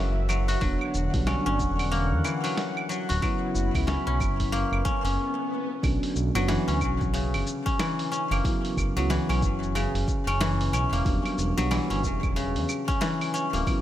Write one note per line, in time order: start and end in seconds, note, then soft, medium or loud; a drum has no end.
0.00 0.56 F#1 loud
0.00 0.64 C#3 medium
0.00 0.67 E3 medium
0.00 0.28 F#3 medium
0.00 0.61 F#3 medium
0.00 1.91 A#3 loud
0.00 0.63 B3 medium
0.00 1.26 C#4 medium
0.00 0.64 E4 medium
0.00 0.32 F#4 medium
0.00 0.60 F#4 medium
0.00 0.59 E5 medium
0.29 0.60 F#3 medium
0.29 claves medium
0.29 shaker medium
0.48 2.92 F#4 medium
0.48 open hi-hat medium
0.48 shaker soft
0.61 0.76 E1 medium
0.61 3.20 D3 medium
0.61 2.42 F#3 medium
0.61 1.09 F#3 medium
0.61 1.10 B3 medium
0.61 1.10 D4 medium
0.61 5.14 F#5 medium
0.61 kick loud
0.61 open hi-hat soft
0.61 shaker soft
0.81 claves medium
0.94 1.09 E1 loud
0.94 shaker medium
1.13 1.36 B1 loud
1.13 1.42 F#3 medium
1.13 1.42 G3 medium
1.13 1.43 B3 medium
1.13 1.43 D4 medium
1.13 kick medium
1.13 open hi-hat medium
1.13 shaker soft
1.27 1.46 C#4 medium
1.27 snare medium
1.27 open hi-hat soft
1.27 claves medium
1.27 shaker soft
1.46 1.61 G1 medium
1.46 3.87 C#4 loud
1.60 2.13 E1 medium
1.60 kick loud
1.60 shaker medium
1.79 open hi-hat medium
1.79 claves medium
1.79 shaker soft
1.91 4.52 A#3 loud
1.91 open hi-hat soft
1.91 shaker soft
2.12 2.21 E2 medium
2.24 3.28 E3 medium
2.24 claves medium
2.24 shaker medium
2.44 2.88 F#3 medium
2.44 open hi-hat medium
2.44 shaker soft
2.58 snare loud
2.58 open hi-hat soft
2.58 shaker soft
2.77 claves medium
2.89 3.21 F#3 medium
2.89 shaker medium
3.09 3.19 D1 loud
3.09 5.53 F#4 medium
3.09 open hi-hat medium
3.09 shaker soft
3.21 3.70 C#3 medium
3.21 3.70 F#3 medium
3.21 5.89 F#3 medium
3.21 3.70 B3 medium
3.21 5.17 E4 medium
3.21 3.71 E4 medium
3.21 5.17 B5 medium
3.21 kick loud
3.21 open hi-hat soft
3.21 claves medium
3.21 shaker soft
3.55 3.69 F#1 loud
3.55 shaker medium
3.74 3.97 C#2 loud
3.74 4.03 C#3 medium
3.74 4.03 F#3 medium
3.74 4.03 B3 medium
3.74 4.04 E4 medium
3.74 kick loud
3.74 open hi-hat medium
3.74 claves medium
3.74 shaker soft
3.87 4.06 C#4 medium
3.87 snare medium
3.87 open hi-hat soft
3.87 shaker soft
4.07 4.22 B1 medium
4.07 4.84 C#4 medium
4.20 4.64 F#1 medium
4.20 kick loud
4.20 claves medium
4.20 shaker medium
4.40 kick medium
4.40 open hi-hat medium
4.40 shaker soft
4.52 7.74 A#3 loud
4.52 open hi-hat soft
4.52 swell medium
4.52 shaker soft
4.72 4.82 F#1 medium
4.72 claves medium
4.85 5.04 C#4 medium
4.85 kick loud
4.85 shaker medium
5.04 5.18 F#1 loud
5.04 6.67 C#4 medium
5.04 open hi-hat medium
5.04 shaker soft
5.83 5.98 B1 medium
5.83 6.31 D3 medium
5.83 6.31 F#3 medium
5.83 6.31 B3 medium
5.83 6.32 C#4 medium
5.83 kick loud
5.83 open hi-hat medium
5.83 claves medium
5.83 shaker soft
6.03 open hi-hat soft
6.03 shaker soft
6.16 6.30 B1 loud
6.16 shaker medium
6.34 6.57 F#1 loud
6.34 6.64 D3 medium
6.34 7.19 F#3 medium
6.34 6.64 F#3 medium
6.34 6.64 B3 medium
6.34 6.64 C#4 medium
6.34 open hi-hat soft
6.34 claves medium
6.34 shaker soft
6.48 7.19 E3 medium
6.48 snare loud
6.48 open hi-hat medium
6.48 shaker soft
6.68 6.83 D2 medium
6.68 7.65 C#4 medium
6.68 open hi-hat soft
6.68 shaker soft
6.81 7.35 B1 medium
6.81 kick medium
6.81 claves medium
6.81 shaker medium
7.01 kick loud
7.01 shaker soft
7.13 8.50 C#3 medium
7.13 open hi-hat medium
7.13 shaker soft
7.34 7.43 F#1 medium
7.34 open hi-hat soft
7.34 claves medium
7.34 shaker soft
7.47 shaker medium
7.66 8.11 C#4 loud
7.66 kick loud
7.66 open hi-hat soft
7.66 shaker soft
7.79 8.50 E3 medium
7.79 snare loud
7.79 open hi-hat medium
7.79 claves medium
7.79 shaker soft
7.99 open hi-hat soft
7.99 shaker soft
8.12 9.29 C#4 medium
8.12 shaker medium
8.31 8.41 F#1 medium
8.31 10.92 A#3 medium
8.31 open hi-hat soft
8.31 claves medium
8.31 shaker soft
8.44 8.92 C#3 medium
8.44 8.92 F#3 medium
8.44 8.92 B3 medium
8.44 8.93 E4 medium
8.44 kick loud
8.44 open hi-hat medium
8.44 shaker soft
8.65 open hi-hat soft
8.65 shaker soft
8.77 8.91 F#1 loud
8.77 kick medium
8.77 claves medium
8.77 shaker medium
8.96 9.19 C#2 medium
8.96 9.25 C#3 medium
8.96 9.80 F#3 loud
8.96 9.25 F#3 medium
8.96 9.25 B3 medium
8.96 9.26 E4 medium
8.96 open hi-hat soft
8.96 shaker soft
9.10 9.80 E3 loud
9.10 snare loud
9.10 open hi-hat medium
9.10 shaker soft
9.29 9.44 B1 medium
9.29 10.27 C#4 medium
9.29 open hi-hat soft
9.29 claves medium
9.29 shaker soft
9.43 9.86 F#1 medium
9.43 kick loud
9.43 shaker medium
9.63 shaker soft
9.75 11.10 C#3 medium
9.75 open hi-hat medium
9.75 claves medium
9.75 shaker soft
9.95 10.04 F#1 medium
9.95 open hi-hat soft
9.95 shaker soft
10.08 kick loud
10.08 shaker medium
10.27 10.59 F#1 loud
10.27 10.73 C#4 loud
10.27 open hi-hat soft
10.27 claves medium
10.27 shaker soft
10.40 11.11 E3 loud
10.40 snare loud
10.40 open hi-hat medium
10.40 shaker soft
10.60 10.69 F#1 medium
10.60 open hi-hat soft
10.60 shaker soft
10.73 10.87 B1 medium
10.73 11.90 C#4 medium
10.73 claves medium
10.73 shaker medium
10.92 11.02 E1 medium
10.92 13.53 A#3 medium
10.92 open hi-hat soft
10.92 shaker soft
11.05 11.20 E1 loud
11.05 11.53 F#3 medium
11.05 11.53 G3 medium
11.05 11.53 B3 medium
11.05 11.54 D4 medium
11.05 kick loud
11.05 open hi-hat medium
11.05 shaker soft
11.25 open hi-hat soft
11.25 claves medium
11.25 shaker soft
11.38 11.52 E1 loud
11.38 shaker medium
11.57 11.80 B1 loud
11.57 11.86 F#3 medium
11.57 12.41 F#3 loud
11.57 11.86 G3 medium
11.57 11.86 B3 medium
11.57 11.86 D4 medium
11.57 open hi-hat soft
11.57 shaker soft
11.71 12.41 E3 medium
11.71 snare loud
11.71 open hi-hat medium
11.71 claves medium
11.71 shaker soft
11.90 12.05 G1 medium
11.90 12.87 C#4 medium
11.90 open hi-hat soft
11.90 shaker soft
12.04 12.57 E1 medium
12.04 kick medium
12.04 shaker medium
12.23 kick loud
12.23 claves medium
12.23 shaker soft
12.36 13.71 C#3 medium
12.36 open hi-hat medium
12.36 shaker soft
12.56 12.65 E2 loud
12.56 open hi-hat soft
12.56 shaker soft
12.69 claves medium
12.69 shaker medium
12.88 13.33 C#4 loud
12.88 kick loud
12.88 open hi-hat soft
12.88 shaker soft
13.01 13.71 E3 loud
13.01 snare loud
13.01 open hi-hat medium
13.01 shaker soft
13.21 open hi-hat soft
13.21 claves medium
13.21 shaker soft
13.34 13.81 C#4 medium
13.34 shaker medium
13.53 13.63 D1 loud
13.53 13.81 A#3 medium
13.53 open hi-hat soft
13.53 shaker soft
13.66 13.81 C#3 medium
13.66 13.81 F#3 medium
13.66 13.81 B3 medium
13.66 13.81 E4 medium
13.66 kick loud
13.66 open hi-hat medium
13.66 claves medium
13.66 shaker soft